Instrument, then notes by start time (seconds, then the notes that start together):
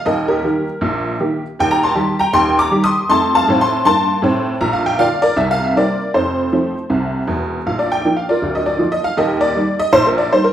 honky-tonk piano
0.05 D#1 D#2 A#4 D#5
0.28 G4 A#4
0.44 D#3 A#3 G4
0.81 A#1 A#2
1.20 D#3 A#3 G4
1.59 D#1 D#2 G5
1.71 A#5
1.83 A5 C6
1.95 D#3 G3 G4
2.19 G5 A#5
2.33 D#1 D#2 G5 C6
2.59 A#5 D6
2.71 D#3 G3 G4
2.84 C6 D#6
3.09 F2 A3 A5 C6
3.35 F5 A5
3.48 A2 C4
3.61 A5 C6
3.85 G2 A#3 A5 C6
4.22 A2 C4
4.61 A#1 A#2 A#5
4.73 F5
4.86 G5
4.99 D3 A#3 F4 D5 F5
5.22 A#4 D5
5.36 C2 C3 E5
5.51 F5
5.64 E5
5.76 G3 A#3 C4 A#4 D5
6.14 F1 F2 A4 C5
6.52 F3 A3 C4
6.90 C2 C3
7.27 E1 E2
7.66 A#1 A#2 F5
7.79 D5
7.92 G5
8.05 F3 A#3 D4
8.16 F5
8.29 F4 A#4 D5
8.42 D1 D2
8.55 D#5
8.66 D5
8.78 F3 A#3 F4
8.92 D#5
9.04 F5
9.17 D#1 D#2 G4 A#4 D#5
9.41 D5
9.55 G3 A#3 D#4
9.79 D#5
9.92 A#1 A#2 C5
10.07 A#4
10.18 D5
10.32 G3 A#3 D#4 C5
10.44 A#4